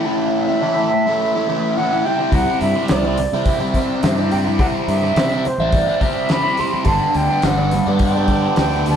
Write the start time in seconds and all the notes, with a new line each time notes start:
0.05 A2 E3 A3 C#4 E4 E5
0.47 A3 C#4 E4
0.63 A2 E3 A3 C#4 E4
0.76 A3 C#4 E4
0.92 muted overdriven electric guitar stroke
1.07 A3 C#4 E4
1.35 A3 C#4 E4
1.49 E3 A3 C#4 E4
1.77 A2 E3 A3 C#4 E4 F#5
1.92 A3 C#4 E4
2.05 C3 G3 C4 E4 G5
2.19 G3 C4 E4
2.32 C2 C3 G3 C4 E4 F#5, kick, open hi-hat
2.61 G2 E5, open hi-hat
2.75 G3 C4 E4
2.88 C2 C3 G3 C4 E4 D5, snare, open hi-hat
3.04 G3 C4 E4, high conga
3.18 muted overdriven electric guitar stroke, open hi-hat, low conga
3.32 C3 G3 C4 E4, high conga
3.46 E5, kick, open hi-hat
3.60 G3 C4 E4
3.74 C3 G3 C4, kick, open hi-hat, high conga
3.79 E4
4.03 G2 C3 G3 C4 E4, snare, open hi-hat, low conga
4.18 G3 C4 E4
4.31 C3 G3 C4 E4 G5, open hi-hat, low conga
4.45 G3 C4 E4, high conga
4.59 C3 G3 C4 E4 F#5, kick, open hi-hat
4.88 G2 E5, open hi-hat
5.02 G3 C4 E4
5.16 C3 G3 C4 E4, snare, open hi-hat
5.32 G3 C4 E4, high conga
5.45 C5, muted overdriven electric guitar stroke, open hi-hat, low conga
5.58 A1 G3 C4 E4, high conga
5.72 D5, kick, open hi-hat
5.88 G3 C4 E4
6.00 C3 G3 C4 E4 E5, kick, open hi-hat, high conga
6.29 C3 G3 C4 E4 B5, snare, open hi-hat, low conga
6.43 G3 C4 E4
6.57 C3 G3 C4 E4 C6, open hi-hat, low conga
6.73 G3 C4 E4, high conga
6.85 G1 G2 D3 G3 B3 D4 A5, kick, open hi-hat
7.14 D2 G5, open hi-hat
7.30 G3 B3 D4
7.42 G1 G2 D3 G3 B3 D4 F#5, snare, open hi-hat
7.57 G3 B3 D4, high conga
7.71 muted overdriven electric guitar stroke, snare, open hi-hat, low conga
7.85 G2 G3 B3 D4, high conga
7.99 G5, kick, open hi-hat
8.15 G3 B3 D4
8.28 D3 G3 B3 D4, kick, open hi-hat, high conga
8.56 D2 G2 D3 G3 B3 D4 G5, snare, open hi-hat, low conga
8.71 G3 B3 D4
8.85 D3 G3 B3 D4, open hi-hat, low conga
8.90 A5